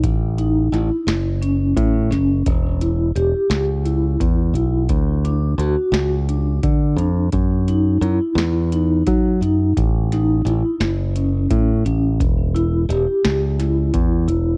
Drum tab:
HH |xxxxxxx|xxxxxxx|xxxxxxx|xxxxxxx|
SD |--oo--o|---o---|---o---|---o---|
BD |o----o-|o----o-|o----o-|o----o-|

HH |xxxxxxx|xxxxxxx|
SD |-o-o---|---oo--|
BD |o----o-|o----o-|